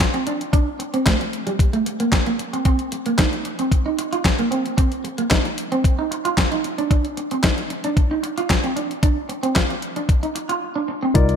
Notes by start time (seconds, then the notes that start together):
0.00 kick, snare, clap, closed hi-hat
0.14 C4, closed hi-hat
0.27 D4, closed hi-hat
0.41 closed hi-hat
0.53 D4, kick, closed hi-hat
0.79 muted clean electric guitar stroke, closed hi-hat
0.94 C4, closed hi-hat
1.06 A3, kick, snare, clap, closed hi-hat
1.20 muted clean electric guitar stroke, closed hi-hat
1.33 closed hi-hat
1.47 G3, closed hi-hat
1.59 kick, closed hi-hat
1.73 A3, closed hi-hat
1.86 muted clean electric guitar stroke, closed hi-hat
2.00 A#3, closed hi-hat
2.12 kick, snare, clap, closed hi-hat
2.26 A#3, closed hi-hat
2.39 muted clean electric guitar stroke, closed hi-hat
2.53 C4, closed hi-hat
2.65 C4, kick, closed hi-hat
2.79 closed hi-hat
2.92 muted clean electric guitar stroke, closed hi-hat
3.06 A#3, closed hi-hat
3.18 D#4, kick, snare, clap, closed hi-hat
3.33 closed hi-hat
3.45 muted clean electric guitar stroke, closed hi-hat
3.59 C4, closed hi-hat
3.72 kick, closed hi-hat
3.86 D#4
3.99 muted clean electric guitar stroke, closed hi-hat
4.13 F4, closed hi-hat
4.25 muted clean electric guitar stroke, kick, snare, clap, closed hi-hat
4.39 A#3, closed hi-hat
4.51 C4, closed hi-hat
4.66 closed hi-hat
4.77 C4, kick, closed hi-hat
4.92 closed hi-hat
5.04 muted clean electric guitar stroke, closed hi-hat
5.18 A#3, closed hi-hat
5.30 D#4, kick, snare, clap, closed hi-hat
5.45 muted clean electric guitar stroke, closed hi-hat
5.58 closed hi-hat
5.72 C4, closed hi-hat
5.84 kick, closed hi-hat
5.99 D#4
6.11 muted clean electric guitar stroke, closed hi-hat
6.25 F4, closed hi-hat
6.38 kick, snare, clap, closed hi-hat
6.52 D#4, closed hi-hat
6.64 muted clean electric guitar stroke, closed hi-hat
6.78 D4, closed hi-hat
6.91 D4, kick, closed hi-hat
7.05 closed hi-hat
7.17 muted clean electric guitar stroke, closed hi-hat
7.31 C4, closed hi-hat
7.43 D#4, kick, snare, clap, closed hi-hat
7.58 closed hi-hat
7.70 muted clean electric guitar stroke, closed hi-hat
7.84 D4, closed hi-hat
7.97 kick, closed hi-hat
8.11 D#4
8.23 muted clean electric guitar stroke, closed hi-hat
8.38 F4, closed hi-hat
8.50 muted clean electric guitar stroke, kick, snare, clap, closed hi-hat
8.64 C4, closed hi-hat
8.76 D4, closed hi-hat
8.91 closed hi-hat
9.03 D4, kick, closed hi-hat
9.29 muted clean electric guitar stroke, closed hi-hat
9.43 C4, closed hi-hat
9.55 F4, kick, snare, clap, closed hi-hat
9.70 muted clean electric guitar stroke, closed hi-hat
9.82 closed hi-hat
9.96 D4, closed hi-hat
10.09 kick, closed hi-hat
10.23 D#4, closed hi-hat
10.35 muted clean electric guitar stroke, closed hi-hat
10.49 F4, closed hi-hat
10.76 D4
10.88 muted clean electric guitar stroke
11.03 C4
11.14 C2 D#4 F4 A#4 D5, kick, closed hi-hat
11.29 closed hi-hat